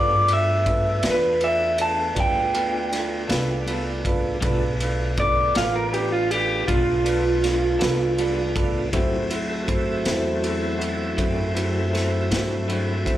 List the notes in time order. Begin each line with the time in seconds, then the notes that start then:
Already playing: G2 G3 A3 B3 D4 F4 A4 B4 D5
0.28 D4 F4 A4 B4, ride
0.33 E5
0.66 D4 F4 A4 B4, kick, ride
1.03 E2 D4 F4 A4 B4, snare, ride
1.07 B3 B4
1.41 D4 F4 A4 B4 E5, ride
1.78 D4 F4 A4 B4 A5, ride
2.14 D2 G3 B3 D4 F4 A4 B4, kick, ride
2.18 F4 G5
2.53 B3 D4 F4 A4 B4, ride
2.91 D4 F4 A4 B4, snare, ride
3.28 C2 B3 D4 F4 A4 B4, snare, ride
3.66 G3 B3 D4 F4 A4 B4, ride
4.05 D4 F4 A4 B4, kick, ride
4.41 B1 G3 B3 D4 F4 A4 B4, kick, ride
4.45 A3 B3
4.80 D4 F4 A4 B4, ride
5.17 D4 F4 A4 B4 D5, kick, ride
5.55 A1 B3 D4 F4 A4 B4 F5, snare, ride
5.76 A#4
5.93 D4 F4 G4 A4 B4, ride
6.12 F4
6.31 D4 F4 G4 A4 B4, ride
6.67 B1 G3 B3 D4 F4 A4 B4, kick, ride
7.04 B3 D4 F4 A4 B4, ride
7.44 D4 F4 A4 B4, snare, ride
7.79 C2 B3 D4 F4 A4 B4, snare, ride
8.18 G3 B3 D4 F4 A4 B4, ride
8.55 D4 F4 A4 B4, kick, ride
8.93 D2 D3 F#3 A3 C4 E4 F#4 A4 C5, kick, ride
9.30 E4 F#4 A4 C5, ride
9.68 E4 F#4 A4 C5, kick, ride
10.05 E2 F#3 C4 E4 F#4 A4 C5, snare, ride
10.42 E4 F#4 A4 C5, ride
10.78 E4 F#4 A4 C5, ride
11.17 F#2 D3 F#3 C4 E4 F#4 A4 C5, kick, ride
11.55 F#3 C4 E4 F#4 A4 C5, ride
11.92 E4 F#4 A4 C5, snare, ride
12.30 G2 F#3 C4 E4 F#4 A4 C5, snare, ride
12.68 D3 F#3 C4 E4 F#4 A4 C5, ride
13.05 E4 F#4 A4 C5, kick, ride